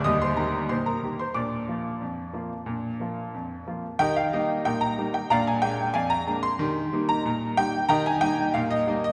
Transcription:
<<
  \new Staff \with { instrumentName = "Grand piano" } { \time 2/4 \key ees \major \tempo 4 = 92 <ees'' ees'''>16 <c'' c'''>16 <bes' bes''>8 <c'' c'''>16 <bes' bes''>8 <c'' c'''>16 | <d'' d'''>2~ | <d'' d'''>4. r8 | <bes' ees'' g''>16 f''16 ees''8 <bes' ees'' g''>16 bes''8 g''16 |
<d'' f'' bes''>16 aes''16 g''8 <d'' f'' aes''>16 bes''8 c'''16~ | c'''8. bes''8. g''8 | <ees'' g'' bes''>16 aes''16 g''8 f''16 ees''8 ees''16 | }
  \new Staff \with { instrumentName = "Grand piano" } { \time 2/4 \key ees \major <ees, g>8 <ees bes g'>8 bes,8 <ees bes g'>8 | <bes, d'>8 <f bes f'>8 f,8 <f bes f'>8 | <bes, d'>8 <f bes f'>8 f,8 <f bes f'>8 | <ees g'>8 <g bes ees'>8 bes,8 <g bes ees'>8 |
<bes, d'>8 <aes bes d'>8 f,8 <aes bes d'>8 | <ees g'>8 <g bes ees'>8 bes,8 <g bes ees'>8 | <ees g'>8 <g bes ees'>8 bes,8 <g bes ees'>8 | }
>>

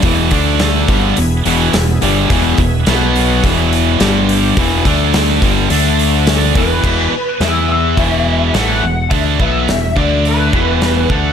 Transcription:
<<
  \new Staff \with { instrumentName = "Lead electric guitar" } { \time 4/4 \key d \lydian \tempo 4 = 106 r1 | r1 | r2. r8 b'8~ | b'4 e''8 e''4. fis''4 |
e''8 e''4 d''8 b'4. fis''8 | }
  \new Staff \with { instrumentName = "Tonewheel organ" } { \time 4/4 \key d \lydian r8 <d' a' a''>4 <b gis' e''>2~ <b gis' e''>8~ | <b gis' e''>4 <b fis' fis''>4 <b gis' e''>4 <d' g' g''>4 | r8 <d' a' a''>4 r8 <d' a' a''>4. r8 | r1 |
r1 | }
  \new Staff \with { instrumentName = "Distorted electric guitar" } { \clef bass \time 4/4 \key d \lydian <e, b, e>8 <d a d'>4 <g, d g>8 <e, b,>8 <e, b, e>8 <e, b,>8 <g, d g>8 | <e, b, e>8 <e, b,>8 <b, fis b>4 <e, b, e>4 <g, d g>4 | <e, b, e>8 <d a d'>4 <g, d g>8 <d a d'>4. <e, b, e>8 | <e, b, e>8 r8 <e b e'>4 <e, b, e>4 <a, e a>8 <e, b,>8 |
<d a d'>8 <b, fis b>8 <e, b,>8 <d a d'>4 <e, b, e>4 <d a d'>8 | }
  \new Staff \with { instrumentName = "Overdriven electric guitar" } { \clef bass \time 4/4 \key d \lydian <e, b, e>8 <d a d'>4 <g, d g>8 <e, b,>8 <e, b, e>8 <e, b,>8 <g, d g>8 | <e, b, e>8 <e, b,>8 <b, fis b>4 <e, b, e>4 <g, d g>4 | <e, b, e>8 <d a d'>4 <g, d g>8 <d a d'>4. <e, b, e>8 | <e, b, e>8 r8 <e b e'>4 <e, b, e>4 <a, e a>8 <e, b,>8 |
<d a d'>8 <b, fis b>8 <e, b,>8 <d a d'>4 <e, b, e>4 <d a d'>8 | }
  \new Staff \with { instrumentName = "Fingered electric bass" } { \clef bass \time 4/4 \key d \lydian e,,8 d,4 g,,8 e,,8 e,,8 e,,8 g,,8 | e,,8 e,,8 b,,4 r4 g,,4 | e,,8 d,4 g,,8 d,4. e,,8 | e,,8 r8 e,4 e,,4 a,,8 e,,8 |
d,8 b,,8 e,,8 d,4 e,,4 d,8 | }
  \new DrumStaff \with { instrumentName = "Drums" } \drummode { \time 4/4 <hho bd>8 <hho bd>8 <hho sn>8 <hho bd>8 hho8 hho8 <hho sn>8 hho8 | <hho bd>8 <hho bd>8 <hho sn>8 hho8 <hho bd>8 hho8 <hho sn>8 hho8 | <hho bd>8 <hho bd>8 <hho sn>8 <hho bd sn>8 hho8 hho8 <hho sn>8 <hho bd>8 | <cymc bd>4 <hho sn>4 <hho bd>4 <hho sn>4 |
<hho bd>8 bd8 <hho sn>8 bd8 hho8 bd8 <hho sn>8 bd8 | }
>>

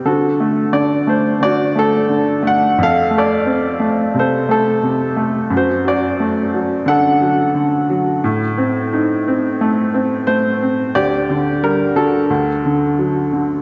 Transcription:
<<
  \new Staff \with { instrumentName = "Upright piano" } { \time 4/4 \key d \phrygian \tempo 4 = 88 << { a'4 d''8 c''8 d''8 a'4 fis''8 | f''8 d''4. c''8 a'4 r8 | c''8 d''4. fis''4. r8 | r2. c''4 |
d''4 bes'8 a'4. r4 | } \\ { fis'2 fis'2 | a'8 a'4. a'2 | fis'8 fis'4. a'2 | r1 |
g'4. fis'2 r8 | } >> }
  \new Staff \with { instrumentName = "Upright piano" } { \clef bass \time 4/4 \key d \phrygian d8 a8 d8 a8 d8 a8 d8 a8 | f,8 a8 c'8 a8 c8 a8 c8 a8 | fis,8 fis8 a8 fis8 d8 fis8 d8 fis8 | a,8 c'8 ees'8 c'8 a8 c'8 a8 c'8 |
d,8 d8 g8 d8 d,8 d8 fis8 d8 | }
>>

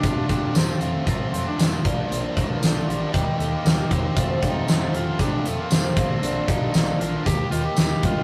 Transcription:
<<
  \new Staff \with { instrumentName = "Tenor saxophone" } { \time 4/4 \key f \mixolydian \tempo 4 = 116 d'8 d'8 c'4 c'8 c'16 d'8. r8 | c'8. a8. g4 a16 bes8. c'8~ | c'8 ees'4 f'8 d'8 a16 bes8. c'8~ | c'8 ees'4 f'8 g'8 f'16 g'8. f'8 | }
  \new Staff \with { instrumentName = "Twelve-string acoustic guitar" } { \time 4/4 \key f \mixolydian r1 | r1 | <f, c f a c' f'>8 <f c' f'>8 <f, c f a c' f'>8 <f a c' f'>8 <f a c' f'>8 <f a c' f'>8 <f, c f a c' f'>8 <c' d' f'>8 | <bes, f c' d' f'>8 <c' f'>8 <bes, f c' d' f'>8 <c' d' f'>8 <ees bes ees' g'>8 <bes ees' g'>8 <ees bes ees' g'>8 <bes ees' g'>8 | }
  \new Staff \with { instrumentName = "Overdriven electric guitar" } { \time 4/4 \key f \mixolydian <f, c f a c' f'>8 <f, c f a c' f'>8 <f, c f a c' f'>8 <f, c f a c' f'>8 <f, c f a c' f'>8 <f, c f a c' f'>8 <f, c f a c' f'>8 <bes, f bes d' f'>8 | <bes, f bes d' f'>8 <bes, f bes d' f'>8 <bes, f bes d' f'>8 <bes, f bes d' f'>8 <ees bes ees' g'>8 <ees bes ees' g'>8 <ees bes ees' g'>8 <ees bes ees' g'>8 | <f, c f a c' f'>8 <f, c f a c' f'>8 <f, c f a c' f'>8 <f, c f a c' f'>8 <f, c f a c' f'>8 <f, c f a c' f'>8 <f, c f a c' f'>8 <bes, d bes d' f'>8 | <bes, d bes d' f'>8 <bes, d bes d' f'>8 <bes, d bes d' f'>8 <bes, d bes d' f'>8 <ees bes ees' g'>8 <ees bes ees' g'>8 <ees bes ees' g'>8 <ees bes ees' g'>8 | }
  \new Staff \with { instrumentName = "Fingered electric bass" } { \clef bass \time 4/4 \key f \mixolydian f,,8 f,,8 f,,8 f,,8 a,,8 f,,8 f,,8 bes,,8 | bes,,8 bes,,8 bes,,8 bes,,8 ees,8 ees,8 ees,8 e,8 | f,,8 f,,8 f,,8 f,,8 a,,8 f,,8 f,,8 bes,,8 | bes,,8 bes,,8 bes,,8 bes,,8 ees,8 ees,8 ees,8 g,8 | }
  \new DrumStaff \with { instrumentName = "Drums" } \drummode { \time 4/4 <hh bd>8 <hh bd>8 <hh sn tamb>8 hh8 <hh bd>8 hh8 <hh sn tamb>8 <hh bd>8 | hh8 <hh bd>8 <hh sn tamb>8 hh8 <hh bd>8 hh8 <hh sn tamb>8 <hh bd>8 | <hh bd>8 <hh bd>8 <hh sn tamb>8 hh8 <hh bd>8 hh8 <hh sn tamb>8 <hh bd>8 | hh8 <hh bd>8 <hh sn tamb>8 hh8 <hh bd>8 hh8 <hh sn tamb>8 <hh bd>8 | }
>>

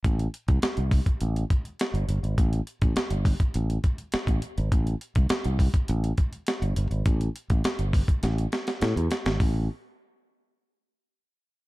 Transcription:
<<
  \new Staff \with { instrumentName = "Fingered electric bass" } { \clef bass \time 4/4 \key c \lydian \tempo 4 = 103 a,,8 r16 c,16 r16 c,8 r16 a,,8 r8. g,,16 g,,16 gis,,16 | a,,8 r16 a,,16 r16 g,,8 r16 a,,8 r8. a,,16 r16 gis,,16 | a,,8 r16 c,16 r16 c,8 r16 a,,8 r8. g,,16 g,,16 gis,,16 | a,,8 r16 a,,16 r16 g,,8 r16 a,,8 r8 a,16 e,16 r16 gis,,16 |
a,,8 r2. r8 | }
  \new DrumStaff \with { instrumentName = "Drums" } \drummode { \time 4/4 <hh bd>16 hh16 hh16 <hh bd>16 <hh sn>16 hh16 <hho bd>16 <hh bd>16 hh16 hh16 <hh bd>16 hh16 <hh sn>16 hh16 hh16 hh16 | <hh bd>16 hh16 hh16 <hh bd>16 <hh sn>16 hh16 <hho bd>16 <hh bd>16 hh16 hh16 <hh bd>16 hh16 <hh sn>16 <hh bd>16 hh16 hh16 | <hh bd>16 hh16 hh16 <hh bd>16 <hh sn>16 hh16 <hho bd>16 <hh bd>16 hh16 hh16 <hh bd>16 hh16 <hh sn>16 hh16 hh16 hh16 | <hh bd>16 hh16 hh16 <hh bd>16 <hh sn>16 hh16 <hho bd>16 <hh bd>16 <hh sn>16 hh16 <hh sn>16 <hh sn>16 <hh sn>16 hh16 <hh sn>16 <hh sn>16 |
<hho bd>4 r4 r4 r4 | }
>>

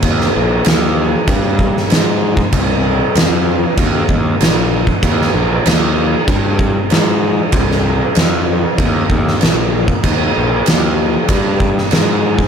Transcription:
<<
  \new Staff \with { instrumentName = "Picked electric bass" } { \clef bass \time 4/4 \key c \minor \tempo 4 = 96 ees,8 bes,,8 ees,4 g,4 aes,4 | c,4 f,4 ees,8 ees,8 bes,,4 | ees,8 bes,,8 ees,4 g,4 aes,4 | c,4 f,4 ees,8 ees,8 bes,,4 |
ees,8 bes,,8 ees,4 g,4 aes,4 | }
  \new DrumStaff \with { instrumentName = "Drums" } \drummode { \time 4/4 <cymc bd>16 sn8. <cymc sn>4 <cymc bd>8 bd16 sn16 <cymc sn>8. bd16 | <cymc bd>4 <cymc sn>4 <cymc bd>8 bd8 <cymc sn>8. bd16 | <cymc bd>16 sn8. <cymc sn>4 <cymc bd>8 bd8 <cymc sn>4 | <cymc bd>16 sn8. <cymc sn>4 <cymc bd>8 bd16 sn16 <cymc sn>8. bd16 |
<cymc bd>4 <cymc sn>4 <cymc bd>8 bd16 sn16 <cymc sn>8. bd16 | }
>>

